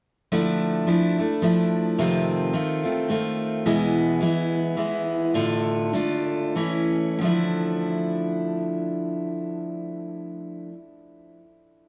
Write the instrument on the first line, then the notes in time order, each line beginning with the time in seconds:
steel-string acoustic guitar
0.32 D3 F3 A3 D4 E4
0.86 F3 A3 D4 E4
1.18 A3 D4 E4
1.42 F3 A3 D4 E4
1.98 F2 C3 D#3 A3 C4 F4
2.53 D#3 A3 C4 F4
2.84 D#3 A3 C4 F4
3.08 D#3 A3 C4 F4
3.66 E2 B2 E3 G#3 B3 E4
4.21 E3 G#3 B3 E4
4.77 E3 G#3 B3 E4
5.34 A2 D3 A3 D4 F4
5.93 D3 A3 D4 F4
6.55 E3 A3 C#4 E4
7.19 D3 F3
7.23 A3 D4 E4